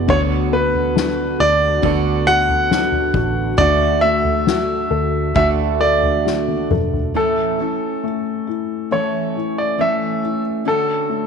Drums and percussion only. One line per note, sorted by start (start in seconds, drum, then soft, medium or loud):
0.09 kick loud
0.09 floor tom loud
0.74 floor tom medium
0.96 snare loud
1.83 kick medium
1.83 floor tom medium
2.49 floor tom medium
2.71 snare loud
2.92 floor tom medium
3.14 kick medium
3.14 floor tom medium
3.58 kick loud
3.58 floor tom loud
4.24 floor tom medium
4.47 snare loud
5.36 kick loud
5.36 floor tom medium
6.03 floor tom medium
6.26 snare medium
6.48 high tom medium
6.70 mid tom medium
6.93 floor tom medium